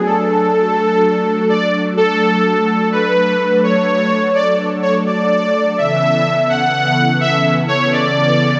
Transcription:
Already playing: F#3 D4
0.06 A3 A4
1.49 D5
1.97 A4
2.92 B4
3.63 C#5
4.35 D5
4.82 C#5
5.06 D5
5.78 C#3 E3 B3 E5
6.49 F#5
7.21 E5
7.68 C#5
7.92 D5

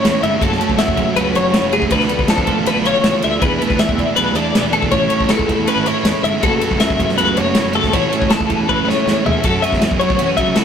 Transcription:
Already playing: A3 C#4 E4 G#4 C#5
0.01 E2 A2 E3 A3 C#4 E4, snare, ride
0.21 G1 G#2 C#4 E4 E5, ride
0.25 A3
0.39 F#1 F#2 F#3 A3 C#4 A4, kick, ride
0.43 F#4
0.52 snare
0.58 A3 C#4 F#4, ride
0.69 F#1, kick
0.76 F#3 A3 C#4 F#4 E5, snare, ride
0.88 F#1, kick
0.96 F#3 B3, kick, ride
1.14 C#2 F#3 A3 C#4 F#4 B4, ride
1.33 F#1 A3 B3 C#4 F#4 C#5, ride
1.52 C#3 F#3 A3 C#4 E4 F#4, snare, ride
1.63 F#1
1.70 A3 C#4 F#4 G#4, ride
1.82 F#2, kick
1.89 D2 D3 F3 A3 D4 B4, kick, ride
1.93 A4
2.00 snare
2.08 D2 A3 B3 D4 A4, ride
2.19 kick
2.27 F2 F3 A3 D4 A4, snare, ride
2.38 kick
2.47 A3 F4, kick, ride
2.57 A1
2.64 D3 F3 A3 B3 D4 A4 B4, ride
2.76 B1
2.83 A3 D4 F4 A4 C#5, ride
3.02 A1 C#3 F3 A3 D4 A4, snare, ride
3.21 D2 D3 A3 D4 A4 E5, ride
3.39 E2 E3 B3 D4 B4, kick, ride
3.43 G#4
3.57 B3 D4 G#4
3.62 A3, ride
3.70 E2, kick
3.76 E3 B3 D4 G#4 E5, snare, ride
3.89 E2, kick
3.98 E3 D4, kick, ride
4.14 B1 E3 A3 B3 D4 G#4 B4, ride
4.34 E2 B3 D4 G#4 D5, ride
4.53 B2 E3 B3 D4 E4 G#4, snare, ride
4.63 E2 F#4
4.71 A3 B3 D4 G#4 A4, ride
4.82 E3, kick
4.91 A1 A2 A3 C#4 E4 A4 C#5, kick, ride
5.09 A1 C#4 E4 A4, ride
5.20 kick
5.29 C#2 A3 C#4 E4 A4, snare, ride
5.39 kick
5.49 A3 E4, kick, ride
5.57 E2
5.66 A3 C#4 E4 A4 B4, ride
5.76 G#1
5.86 C#4 E4 A4 C#5, ride
6.03 E2 A2 A3 C#4 E4, snare, ride
6.08 A4
6.22 G1 G#2 C#4 E4 A4 E5, ride
6.40 F#1 F#2 F#3 C#4 F#4 A4, kick, ride
6.44 F#3 A3 B3 E4
6.60 C#4 F#4 A4, ride
6.65 A3
6.71 F#1, kick
6.78 F#3 C#4 F#4 A4 E5, snare, ride
6.90 F#1, kick
7.00 F#3 B3, kick, ride
7.09 snare
7.14 F#3 C#4 F#4 A4 B4, ride
7.19 C#2 A3
7.34 F#1 C#4 F#4 A4 C#5, ride
7.39 B3
7.54 C#3 F#3 C#4 F#4 A4, snare, ride
7.58 E4
7.65 F#1
7.72 A3 C#4 F#4 A4, ride
7.83 G#1, kick, snare
7.91 A1 A2 E3 A3 C#4 E4 A4 C#5, kick, ride
7.95 F#4
8.10 A1 A3 C#4 E4 A4, ride
8.22 kick
8.30 C#2 A3 C#4 E4 A4, snare, ride
8.41 kick
8.50 E3 C#4, kick, ride
8.59 E2
8.67 A3 C#4 E4 A4 B4, kick
8.79 F#1
8.85 C#4 E4 A4 C#5
8.89 C#4, snare
9.06 E2 A2 A3 C#4 E4, snare
9.10 A4
9.25 E2 G#2 C#4 E4 A4 E5, floor tom
9.44 F#2 F#3 A3 C#4 F#4 A4, kick, ride
9.62 A3 C#4 F#4 E5, ride
9.72 E2, kick, snare
9.80 F#3 A3 C#4 F#4, snare, ride
9.91 kick
10.00 F#3 C#4 E4 F#4 C#5, ride
10.04 A3
10.09 F#4, kick
10.18 E3 F#3 A3 B3 C#4, ride
10.23 C#4 F#4
10.36 F#2 C#3 C#4 F#4 E5, kick, ride
10.41 F#3 A3
10.55 F#3 A3 C#4 E4 F#4 A4, snare, ride

